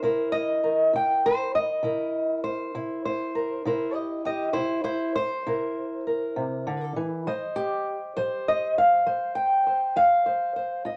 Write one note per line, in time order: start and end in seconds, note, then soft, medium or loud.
0.03 0.57 C3 medium
0.03 1.83 E4 soft
0.03 0.63 A#4 soft
0.03 0.32 C5 soft
0.32 0.93 D#5 loud
0.64 1.84 A#4 soft
0.93 1.47 C3 medium
0.93 1.24 G5 medium
1.26 1.55 C5 loud
1.55 2.43 D#5 medium
1.83 2.37 C3 medium
1.83 2.73 E4 soft
1.83 3.34 A#4 soft
2.44 3.04 C5 medium
2.75 3.29 C3 medium
2.75 3.61 E4 soft
3.05 3.65 C5 medium
3.35 3.61 A#4 soft
3.65 4.19 C3 medium
3.65 4.52 E4 soft
3.65 3.94 A#4 soft
3.65 3.95 C5 soft
3.94 4.24 G4 medium
3.94 4.25 D#5 medium
4.25 4.53 G4 medium
4.25 4.53 D#5 medium
4.53 5.10 C3 medium
4.53 4.83 E4 medium
4.53 4.83 C5 medium
4.84 5.15 E4 medium
4.84 5.14 C5 medium
5.16 6.96 C5 medium
5.47 6.00 C3 medium
5.47 7.23 E4 soft
5.47 6.06 A#4 soft
6.07 7.23 A#4 soft
6.36 6.66 C3 medium
6.67 6.96 D3 medium
6.96 7.26 E3 medium
7.27 7.80 F3 medium
7.27 8.16 C5 medium
7.27 8.48 D#5 soft
7.56 8.76 G4 medium
8.17 8.71 F3 medium
8.17 9.05 C5 medium
8.48 8.77 D#5 medium
8.78 9.35 F5 medium
9.06 9.60 F3 medium
9.06 9.66 C5 soft
9.35 9.96 G5 medium
9.67 10.26 C5 soft
9.96 10.50 F3 medium
9.96 10.97 F5 medium
10.26 10.56 C5 soft
10.56 10.86 C5 soft
10.85 10.97 F4 medium
10.85 10.97 D#5 soft